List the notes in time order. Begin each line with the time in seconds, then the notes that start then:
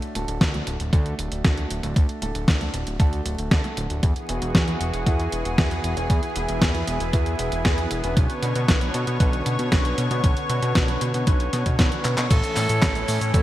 Already playing: A3 D4 F#4 A4
0.02 closed hi-hat
0.15 D1 A3 D4 F#4 A4, closed hi-hat
0.28 D1, closed hi-hat
0.41 D2, kick, snare, closed hi-hat
0.54 A3 D4 F#4 A4, closed hi-hat
0.67 D1, closed hi-hat
0.80 D1, closed hi-hat
0.93 D2 A3 D4 F#4 A4, kick, closed hi-hat
1.06 closed hi-hat
1.19 D1, closed hi-hat
1.32 D1, closed hi-hat
1.44 D2 A3 D4 F#4 A4, kick, snare, closed hi-hat
1.57 closed hi-hat
1.70 D1, closed hi-hat
1.83 D1 A3 D4 F#4 A4, closed hi-hat
1.96 D2, kick, closed hi-hat
2.09 closed hi-hat
2.22 D1 A3 D4 F#4 A4, closed hi-hat
2.35 D1, closed hi-hat
2.48 D2, kick, snare, closed hi-hat
2.61 A3 D4 F#4 A4, closed hi-hat
2.74 D1, closed hi-hat
2.87 D1, closed hi-hat
2.99 D2 A3 D4 F#4 A4, kick, closed hi-hat
3.13 closed hi-hat
3.25 D1, closed hi-hat
3.38 D1, closed hi-hat
3.51 D2 A3 D4 F#4 A4, kick, snare, closed hi-hat
3.64 A3 D4 F#4 A4, closed hi-hat
3.77 D1, closed hi-hat
3.90 D1, closed hi-hat
4.03 E2 E3 B3 F#4 G#4, kick, closed hi-hat
4.16 closed hi-hat
4.29 E1 B3 E4 F#4 G#4, closed hi-hat
4.42 E1, closed hi-hat
4.55 E2, kick, snare, closed hi-hat
4.68 B3 E4 F#4 G#4, closed hi-hat
4.81 E1, closed hi-hat
4.93 E1, closed hi-hat
5.06 E2 B3 E4 F#4 G#4, kick, closed hi-hat
5.20 closed hi-hat
5.32 E1, closed hi-hat
5.45 E1, closed hi-hat
5.58 E2 B3 E4 F#4 G#4, kick, snare, closed hi-hat
5.71 closed hi-hat
5.84 E1, closed hi-hat
5.97 E1 B3 E4 F#4 G#4, closed hi-hat
6.10 E2 E4, kick, closed hi-hat
6.23 closed hi-hat
6.36 E1 B3 E4 F#4 G#4, closed hi-hat
6.49 E1, closed hi-hat
6.62 E2, kick, snare, closed hi-hat
6.74 B3 E4 F#4 G#4, closed hi-hat
6.87 E1, closed hi-hat
7.00 E1, closed hi-hat
7.13 E2 B3 E4 F#4 G#4, kick, closed hi-hat
7.26 closed hi-hat
7.39 E1, closed hi-hat
7.52 E1, closed hi-hat
7.65 E2 B3 E4 F#4 G#4, kick, snare, closed hi-hat
7.78 closed hi-hat
7.91 E1, closed hi-hat
8.04 E1 C#4 D4 F#4 B4, closed hi-hat
8.17 B1 D3 C#5, kick, closed hi-hat
8.30 closed hi-hat
8.43 B2 C#4 D4 F#4 B4, closed hi-hat
8.55 B2, closed hi-hat
8.68 B1, kick, snare, closed hi-hat
8.81 C#4 D4 F#4 B4, closed hi-hat
8.94 B2, closed hi-hat
9.07 B2, closed hi-hat
9.20 B1 C#4 D4 F#4 B4, kick, closed hi-hat
9.33 closed hi-hat
9.46 B2, closed hi-hat
9.59 B2, closed hi-hat
9.72 B1 C#4 D4 F#4 B4, kick, snare, closed hi-hat
9.85 closed hi-hat
9.98 B2, closed hi-hat
10.11 B2 C#4 D4 F#4 B4, closed hi-hat
10.24 B1, kick, closed hi-hat
10.37 closed hi-hat
10.49 B2 C#4 D4 F#4 B4, closed hi-hat
10.62 B2, closed hi-hat
10.75 B1, kick, snare, closed hi-hat
10.88 C#4 D4 F#4 B4, closed hi-hat
11.01 B2, closed hi-hat
11.14 B2, closed hi-hat
11.27 B1 C#4 D4 F#4 B4, kick, closed hi-hat
11.40 closed hi-hat
11.53 B2, snare, closed hi-hat
11.66 B2, kick, closed hi-hat
11.79 B1 C#4 D4 F#4 B4, kick, snare, closed hi-hat
11.92 C#4 D4 F#4 B4, closed hi-hat
12.05 B2, clap, closed hi-hat
12.18 B2, clap, closed hi-hat
12.30 A1 E3 A3 C#4 A4, kick, closed hi-hat, crash, cabasa
12.44 closed hi-hat, cabasa
12.56 A2 C#4 E4 A4 C#5, clap, open hi-hat, cabasa
12.69 A2, closed hi-hat, cabasa
12.82 A1, kick, snare, clap, closed hi-hat, cabasa
12.95 C#4 E4 A4 C#5, closed hi-hat, cabasa
13.08 A2, open hi-hat, cabasa
13.21 A2, closed hi-hat, cabasa
13.34 A1 C#4 E4 A4 C#5, kick, closed hi-hat, cabasa